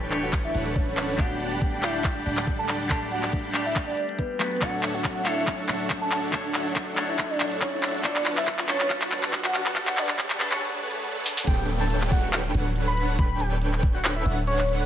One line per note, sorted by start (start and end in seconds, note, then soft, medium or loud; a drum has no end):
0.00 0.52 D1 medium
0.00 0.52 D4 medium
0.00 0.10 G4 medium
0.00 0.52 A4 medium
0.00 0.52 B4 medium
0.00 0.52 C#5 medium
0.00 0.52 G5 medium
0.00 riser medium
0.10 1.15 E3 medium
0.10 1.15 G3 medium
0.10 1.16 A3 medium
0.10 1.17 G4 medium
0.10 1.17 C#5 medium
0.10 clap medium
0.10 closed hi-hat medium
0.23 0.35 F#5 medium
0.33 kick medium
0.33 clap medium
0.33 closed hi-hat medium
0.44 0.63 E5 loud
0.54 1.17 D1 loud
0.54 1.16 D4 medium
0.54 1.16 A4 medium
0.54 1.16 B4 medium
0.54 1.16 C#5 medium
0.54 1.16 F#5 medium
0.54 closed hi-hat medium
0.66 closed hi-hat medium
0.76 1.20 C#5 loud
0.76 kick loud
0.76 closed hi-hat medium
0.97 clap medium
0.97 closed hi-hat medium
1.03 closed hi-hat medium
1.08 closed hi-hat soft
1.14 1.80 G3 medium
1.14 closed hi-hat medium
1.18 2.24 D1 medium
1.18 1.80 A3 medium
1.18 1.81 B3 medium
1.18 2.23 D4 medium
1.18 1.81 D4 medium
1.18 1.82 G4 medium
1.18 2.23 D5 medium
1.18 2.23 F#5 medium
1.18 1.53 F#5 loud
1.18 2.23 G5 medium
1.18 2.23 B5 medium
1.18 kick medium
1.18 clap medium
1.18 closed hi-hat medium
1.40 closed hi-hat medium
1.51 1.84 G5 medium
1.51 closed hi-hat medium
1.61 kick loud
1.61 closed hi-hat medium
1.81 2.87 G3 medium
1.81 2.87 A3 medium
1.81 2.88 D4 medium
1.81 2.08 E5 loud
1.81 clap medium
1.81 closed hi-hat medium
1.85 2.89 G4 loud
2.04 kick medium
2.04 clap medium
2.04 closed hi-hat medium
2.26 2.88 D1 loud
2.26 2.88 D4 medium
2.26 2.88 D5 medium
2.26 2.88 F#5 medium
2.26 2.88 G5 medium
2.26 2.88 A5 medium
2.26 2.88 B5 medium
2.26 closed hi-hat medium
2.37 clap medium
2.37 closed hi-hat medium
2.47 kick loud
2.47 closed hi-hat medium
2.59 2.78 A5 loud
2.69 clap medium
2.69 closed hi-hat soft
2.74 closed hi-hat medium
2.80 closed hi-hat soft
2.85 3.51 G3 medium
2.85 3.51 A3 medium
2.85 closed hi-hat medium
2.90 3.93 D1 loud
2.90 3.95 D4 medium
2.90 3.52 D4 medium
2.90 3.53 G4 medium
2.90 3.95 F#5 medium
2.90 3.95 G5 medium
2.90 3.95 A5 medium
2.90 3.03 A5 medium
2.90 kick medium
2.90 clap medium
2.90 closed hi-hat medium
3.12 3.25 F#5 medium
3.12 closed hi-hat medium
3.23 clap medium
3.23 closed hi-hat medium
3.33 kick loud
3.33 closed hi-hat medium
3.52 4.37 G3 medium
3.52 4.38 A3 medium
3.52 4.39 D4 medium
3.52 clap medium
3.52 closed hi-hat medium
3.56 4.39 G4 loud
3.66 3.78 E5 medium
3.76 kick loud
3.76 clap medium
3.76 closed hi-hat medium
3.87 4.06 D5 loud
3.97 closed hi-hat medium
4.09 closed hi-hat medium
4.19 4.63 B4 loud
4.19 kick loud
4.19 closed hi-hat medium
4.39 4.58 F#3 medium
4.39 4.59 A3 medium
4.39 4.59 B3 medium
4.39 4.59 D4 medium
4.39 4.60 G4 loud
4.39 clap medium
4.39 closed hi-hat soft
4.46 closed hi-hat medium
4.52 closed hi-hat soft
4.56 5.22 F#3 medium
4.56 closed hi-hat medium
4.61 5.67 D1 loud
4.61 5.23 A3 medium
4.61 5.66 D4 medium
4.61 5.24 D4 medium
4.61 5.66 A4 medium
4.61 5.24 A4 medium
4.61 5.23 C#5 medium
4.61 5.66 C#5 medium
4.61 5.66 E5 medium
4.61 4.81 F#5 loud
4.61 5.66 F#5 medium
4.61 kick medium
4.61 clap medium
4.61 closed hi-hat medium
4.83 clap medium
4.83 closed hi-hat medium
4.94 5.27 F#5 loud
4.94 closed hi-hat medium
5.04 kick loud
5.04 clap medium
5.04 closed hi-hat medium
5.24 6.30 F#3 medium
5.24 6.30 A3 medium
5.24 6.31 D4 medium
5.24 6.30 C#5 medium
5.24 5.51 E5 loud
5.24 clap medium
5.24 closed hi-hat medium
5.28 6.32 A4 loud
5.47 kick medium
5.47 clap medium
5.47 closed hi-hat medium
5.69 6.31 D1 loud
5.69 6.31 D4 medium
5.69 6.31 A4 medium
5.69 6.31 C#5 medium
5.69 6.31 E5 medium
5.69 6.31 F#5 medium
5.69 clap medium
5.69 closed hi-hat medium
5.80 closed hi-hat medium
5.90 kick loud
5.90 clap medium
5.90 closed hi-hat medium
6.01 6.20 A5 medium
6.11 clap medium
6.11 closed hi-hat soft
6.17 closed hi-hat medium
6.23 closed hi-hat soft
6.28 6.94 F#3 medium
6.28 6.94 A3 medium
6.28 closed hi-hat medium
6.33 7.38 D1 medium
6.33 7.38 D4 medium
6.33 6.95 D4 medium
6.33 6.96 A4 medium
6.33 6.95 C#5 medium
6.33 7.38 C#5 medium
6.33 6.46 A5 medium
6.33 kick medium
6.33 clap medium
6.33 closed hi-hat medium
6.54 6.68 F#5 medium
6.54 clap medium
6.54 closed hi-hat medium
6.66 closed hi-hat medium
6.76 kick loud
6.76 clap medium
6.76 closed hi-hat medium
6.95 8.01 F#3 medium
6.95 8.02 A3 medium
6.95 8.03 D4 medium
6.95 8.02 C#5 medium
6.95 clap medium
6.95 closed hi-hat medium
6.99 8.03 A4 loud
7.08 7.31 E5 medium
7.19 kick loud
7.19 clap medium
7.19 closed hi-hat medium
7.30 7.49 D5 loud
7.40 8.02 D1 loud
7.40 8.02 D4 medium
7.40 8.02 A4 medium
7.40 8.02 C#5 medium
7.40 8.02 E5 medium
7.40 8.02 F#5 medium
7.40 clap medium
7.40 closed hi-hat medium
7.52 closed hi-hat medium
7.61 7.87 C#5 loud
7.61 kick loud
7.61 clap medium
7.61 closed hi-hat medium
7.83 clap medium
7.83 closed hi-hat soft
7.89 closed hi-hat medium
7.94 closed hi-hat soft
7.99 8.65 F#3 medium
7.99 8.66 A3 medium
7.99 closed hi-hat medium
8.04 9.10 D1 medium
8.04 8.66 B3 medium
8.04 9.09 D4 medium
8.04 8.67 D4 medium
8.04 8.67 A4 medium
8.04 9.09 B4 medium
8.04 8.23 D5 loud
8.04 kick medium
8.04 clap medium
8.04 closed hi-hat medium
8.16 clap medium
8.26 clap medium
8.26 closed hi-hat medium
8.37 8.56 E5 loud
8.37 clap medium
8.37 closed hi-hat medium
8.47 kick loud
8.47 clap medium
8.47 closed hi-hat medium
8.59 clap medium
8.67 9.72 F#3 medium
8.67 9.73 A3 medium
8.67 9.73 B3 medium
8.67 9.74 D4 medium
8.67 9.74 A4 loud
8.67 8.94 C#5 loud
8.67 clap medium
8.67 closed hi-hat medium
8.80 clap medium
8.90 kick medium
8.90 clap loud
8.90 closed hi-hat medium
9.02 clap medium
9.11 9.74 D1 loud
9.11 9.73 D4 medium
9.11 9.73 B4 medium
9.11 9.73 C#5 medium
9.11 9.73 F#5 medium
9.11 9.73 A5 medium
9.11 clap loud
9.11 closed hi-hat medium
9.23 clap medium
9.23 closed hi-hat medium
9.33 kick loud
9.33 clap loud
9.33 closed hi-hat medium
9.44 9.63 F#5 loud
9.44 clap medium
9.54 clap loud
9.54 closed hi-hat soft
9.60 closed hi-hat medium
9.66 clap medium
9.66 closed hi-hat soft
9.71 10.37 F#3 medium
9.71 closed hi-hat medium
9.75 10.62 D1 loud
9.75 10.37 A3 medium
9.75 10.38 B3 medium
9.75 10.81 D4 medium
9.75 10.38 D4 medium
9.75 10.39 A4 medium
9.75 10.81 B4 medium
9.75 9.99 F#5 medium
9.75 10.81 A5 medium
9.75 kick loud
9.75 clap loud
9.75 closed hi-hat medium
9.87 clap medium
9.97 10.11 D5 medium
9.97 clap loud
9.97 closed hi-hat medium
10.09 clap medium
10.09 closed hi-hat medium
10.19 kick loud
10.19 clap loud
10.19 closed hi-hat medium
10.30 clap medium
10.38 10.60 F#3 medium
10.38 10.61 A3 medium
10.38 10.61 B3 medium
10.38 10.62 D4 medium
10.38 clap loud
10.38 closed hi-hat medium
10.42 10.62 A4 loud
10.51 10.61 C#5 medium
10.51 clap medium
10.62 swell medium
10.83 11.45 D4 medium
10.83 11.45 B4 medium
10.83 11.45 C#5 medium
10.83 11.45 F#5 medium
10.83 11.45 A5 medium
11.26 snare medium
11.37 snare medium
11.47 12.52 D1 medium
11.47 12.52 D4 medium
11.47 12.52 A4 medium
11.47 12.52 B4 medium
11.47 12.52 C#5 medium
11.47 11.66 G5 loud
11.47 12.52 G5 medium
11.47 kick loud
11.47 closed hi-hat medium
11.47 crash loud
11.47 downlifter medium
11.69 closed hi-hat medium
11.80 11.99 A5 loud
11.90 closed hi-hat medium
12.02 clap soft
12.12 12.37 F#5 loud
12.12 kick loud
12.12 closed hi-hat medium
12.33 clap loud
12.33 closed hi-hat medium
12.54 13.17 D1 loud
12.54 13.16 D4 medium
12.54 13.16 A4 medium
12.54 13.16 B4 medium
12.54 13.16 C#5 medium
12.54 13.16 F#5 medium
12.54 closed hi-hat medium
12.76 closed hi-hat medium
12.87 13.06 B5 loud
12.97 closed hi-hat medium
13.19 14.24 D1 loud
13.19 14.24 D4 medium
13.19 14.24 A4 medium
13.19 14.24 C#5 medium
13.19 14.24 G5 medium
13.19 13.42 B5 medium
13.19 kick loud
13.19 closed hi-hat medium
13.40 13.53 G5 medium
13.40 closed hi-hat medium
13.62 closed hi-hat medium
13.73 clap soft
13.83 kick loud
13.83 closed hi-hat medium
13.94 14.06 F#5 medium
14.04 clap loud
14.04 closed hi-hat medium
14.16 14.35 E5 loud
14.26 14.86 D1 loud
14.26 14.86 D4 medium
14.26 14.86 A4 medium
14.26 14.86 B4 medium
14.26 14.86 C#5 medium
14.26 14.86 F#5 medium
14.26 closed hi-hat medium
14.47 14.73 C#5 loud
14.47 closed hi-hat medium
14.59 clap soft
14.69 closed hi-hat medium